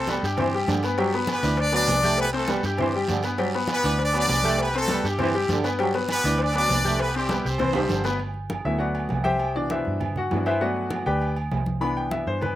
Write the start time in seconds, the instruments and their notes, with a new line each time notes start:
Already playing: fingered electric bass C2, horn section A3 F#4 A4
0.08 trombone section G3, upright piano B3 B4 B5, cowbell, high conga, low timbale, low agogo, short guiro
0.22 fingered electric bass G2, horn section G3 E4 G4, upright piano G4 G5 G6, high conga, short guiro
0.37 trombone section E3, upright piano C4 C5 C6, cowbell, high conga, low conga, low agogo, long guiro
0.53 upright piano G3 G4 G5, high conga
0.68 fingered electric bass G2, trombone section D3, cowbell, high conga, low timbale, low agogo, short guiro
0.83 upright piano B3 B4 B5, cowbell, high conga, low agogo, short guiro
0.97 trombone section F#3, upright piano G3 G4 G5, cowbell, high conga, low agogo, long guiro
1.12 upright piano B3 B4 B5, cowbell, high conga
1.27 horn section B3 G4 B4, cowbell, high conga, low timbale, low agogo, short guiro
1.43 fingered electric bass D2, trombone section E3, upright piano D4 D5 D6, cowbell, high conga, short guiro
1.57 horn section D4 B4 D5, cowbell, high conga, low agogo, long guiro
1.72 trombone section F#3, upright piano B3 B4 B5, horn section D4 B4 D5, cowbell, low agogo
1.88 fingered electric bass C2, cowbell, high conga, low timbale, low agogo, short guiro
2.03 trombone section A3, upright piano G4 G5 G6, cowbell, high conga, short guiro
2.18 horn section B3 G4 B4, cowbell, low agogo, long guiro
2.33 horn section A3 F#4 A4, upright piano C4 C5 C6, cowbell, high conga
2.48 trombone section G3, upright piano B3 B4 B5, cowbell, high conga, low timbale, low agogo, short guiro
2.63 fingered electric bass G2, horn section G3 E4 G4, upright piano G4 G5 G6, high conga, short guiro
2.78 trombone section E3, upright piano C4 C5 C6, cowbell, high conga, low conga, low agogo, long guiro
2.94 upright piano G3 G4 G5, high conga
3.08 fingered electric bass G2, trombone section D3, cowbell, high conga, low timbale, low agogo, short guiro
3.23 upright piano B3 B4 B5, cowbell, high conga, low agogo, short guiro
3.37 trombone section F#3, upright piano G3 G4 G5, cowbell, high conga, low agogo, long guiro
3.53 upright piano B3 B4 B5, cowbell, high conga
3.68 horn section B3 G4 B4, cowbell, high conga, low timbale, low agogo, short guiro
3.83 fingered electric bass D2, trombone section E3, upright piano D4 D5 D6, cowbell, high conga, short guiro
3.98 horn section B4, cowbell, high conga, low agogo, long guiro
4.02 horn section D4 D5
4.13 trombone section F#3, upright piano B3 B4 B5, horn section D4 B4 D5, cowbell, high conga, low agogo
4.27 fingered electric bass C2, cowbell, high conga, low timbale, low agogo, short guiro
4.43 trombone section A3, upright piano G4 G5 G6, cowbell, high conga, short guiro
4.58 horn section B3 G4 B4, cowbell, high conga, low agogo, long guiro
4.74 upright piano C4 C5 C6, horn section F#4, cowbell, high conga
4.78 horn section A3 A4
4.88 trombone section G3, upright piano B3 B4 B5, cowbell, high conga, low timbale, low agogo, short guiro
5.04 fingered electric bass G2, horn section G3 E4 G4, upright piano G4 G5 G6, short guiro
5.19 trombone section E3, upright piano C4 C5 C6, cowbell, high conga, low conga, low agogo, long guiro
5.35 upright piano G3 G4 G5
5.49 fingered electric bass G2, trombone section D3, cowbell, high conga, low timbale, low agogo, short guiro
5.64 upright piano B3 B4 B5, cowbell, high conga, low agogo, short guiro
5.79 trombone section F#3, upright piano G3 G4 G5, cowbell, high conga, low agogo, long guiro
5.94 upright piano B3 B4 B5, cowbell, high conga
6.08 horn section B3 G4 B4, cowbell, high conga, low timbale, low agogo, short guiro
6.24 fingered electric bass D2, trombone section E3, upright piano D4 D5 D6, cowbell, short guiro
6.38 horn section D4 B4 D5, cowbell, high conga, low agogo, long guiro
6.53 trombone section F#3, upright piano B3 B4 B5, horn section D4 B4 D5, cowbell, high conga, low agogo
6.68 fingered electric bass C2, cowbell, high conga, low timbale, low agogo, short guiro
6.84 trombone section A3, upright piano G4 G5 G6, cowbell, high conga, short guiro
6.99 horn section B3 G4 B4, cowbell, low agogo, long guiro
7.14 horn section G3 E4 G4, upright piano C4 C5 C6, cowbell, high conga
7.29 trombone section G3, upright piano B3 B4 B5, cowbell, high conga, low timbale, low agogo, short guiro
7.45 fingered electric bass C2, horn section C4 A4 C5, upright piano G4 G5 G6, high conga, short guiro
7.58 trombone section E3, upright piano C4 C5 C6, cowbell, high conga, low conga, low agogo, long guiro
7.73 upright piano G3 G4 G5, high conga, low conga, high timbale
7.89 fingered electric bass G1, trombone section D3, cowbell, high conga, low agogo, short guiro
8.04 upright piano B3 B4 B5, cowbell, high conga, low timbale, low agogo, short guiro
8.19 high conga, low agogo
8.34 high conga
8.50 high conga, low timbale, low agogo
8.64 fingered electric bass D2, upright piano F#3 A3 B3 E4 E5, high conga
8.78 upright piano F#4 B4 D5 F#5, high conga, low agogo
8.95 high conga, low agogo
9.09 fingered electric bass C2, high conga, low timbale, low agogo
9.24 upright piano G4 C5 E5 G5, high conga
9.39 high conga, low agogo
9.55 upright piano B2 E3 D4 D5, high conga
9.70 upright piano E4 B4 C5 E5, high conga, low timbale, low agogo
9.85 fingered electric bass G2, high conga
10.01 high conga, low conga, low agogo
10.16 upright piano F#4 F#5, high conga, low conga
10.31 fingered electric bass G2, upright piano E3 B3 D4, high conga, low timbale, low agogo
10.46 upright piano E4 B4 C5 E5, high conga, low agogo
10.60 upright piano F#3 A3 B3 F#4 B4 D5 F#5, high conga, low agogo
10.76 high conga
10.91 high conga, low timbale, low agogo
11.06 fingered electric bass D2, upright piano G4 B4 D5 G5, high conga
11.21 high conga, low agogo
11.36 high conga, low agogo
11.51 fingered electric bass C2, high conga, low timbale, low agogo
11.66 high conga
11.81 upright piano E3 B3 D4 B5, high conga, low agogo
11.96 upright piano G5, high conga
12.11 upright piano E5, high conga, low timbale, low agogo
12.27 fingered electric bass G2, upright piano C5, high conga
12.41 upright piano B4, high conga, low conga, low agogo